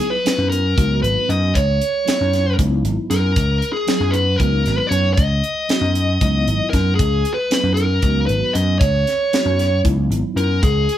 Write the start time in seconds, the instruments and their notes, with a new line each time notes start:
Already playing: tine electric piano F#3 B3 D#4 E4
0.00 closed hi-hat
0.10 lead electric guitar B4
0.24 tine electric piano F#3 B3 D#4 E4, snare, closed hi-hat
0.38 slap bass F#2
0.49 lead electric guitar A#4, closed hi-hat
0.76 slap bass C#2, tine electric piano F#3 B3 D#4 F#4, kick, closed hi-hat
1.02 slap bass G#1, lead electric guitar B4, closed hi-hat
1.29 slap bass F#2, lead electric guitar D#5, closed hi-hat
1.55 slap bass C#2, lead electric guitar C#5, kick, closed hi-hat
1.81 closed hi-hat
2.05 tine electric piano F#3 B3 D#4 E4, snare, closed hi-hat
2.21 slap bass F#2
2.33 snare, closed hi-hat
2.56 slap bass C#2, tine electric piano F#3 B3 D#4 E4, kick, closed hi-hat
2.84 slap bass G#1, closed hi-hat
3.10 slap bass F#2, lead electric guitar A#4, snare, closed hi-hat
3.36 slap bass C#2, kick, closed hi-hat
3.62 closed hi-hat
3.73 lead electric guitar G#4
3.87 tine electric piano F#3 B3 D#4 E4, snare, closed hi-hat
4.00 slap bass F#2
4.11 lead electric guitar B4, closed hi-hat
4.36 slap bass C#2, tine electric piano F#3 B3 D#4 F#4, lead electric guitar A#4, kick, closed hi-hat
4.66 slap bass G#1, snare, closed hi-hat
4.76 lead electric guitar B4
4.87 slap bass F#2, lead electric guitar C#5
4.92 closed hi-hat
5.14 slap bass C#2, lead electric guitar D#5, kick
5.18 closed hi-hat
5.44 closed hi-hat
5.69 tine electric piano F#3 B3 D#4 F#4, snare, closed hi-hat
5.81 slap bass F#2
5.95 closed hi-hat
6.21 slap bass C#2, tine electric piano F#3 B3 D#4 E4, kick, closed hi-hat
6.47 slap bass G#1, closed hi-hat
6.70 slap bass F#2, lead electric guitar A#4, kick, closed hi-hat
6.74 snare
6.95 lead electric guitar G#4
6.99 slap bass C#2, kick, closed hi-hat
7.25 closed hi-hat
7.34 lead electric guitar B4
7.50 tine electric piano F#3 B3 D#4 E4, snare, closed hi-hat
7.63 slap bass F#2
7.74 lead electric guitar A#4, closed hi-hat
8.01 slap bass C#2, tine electric piano F#3 B3 D#4 F#4, kick, closed hi-hat
8.26 slap bass G#1, lead electric guitar B4, closed hi-hat
8.53 slap bass F#2, lead electric guitar D#5, closed hi-hat
8.79 slap bass C#2, lead electric guitar C#5, kick, closed hi-hat
9.07 snare, closed hi-hat
9.33 tine electric piano F#3 B3 D#4 F#4, snare, closed hi-hat
9.45 slap bass F#2
9.59 snare, closed hi-hat
9.83 slap bass C#2, tine electric piano F#3 B3 D#4 E4, kick, closed hi-hat
10.10 slap bass G#1, closed hi-hat
10.36 slap bass F#2, lead electric guitar A#4, closed hi-hat
10.63 slap bass C#2, lead electric guitar G#4, kick, closed hi-hat
10.89 closed hi-hat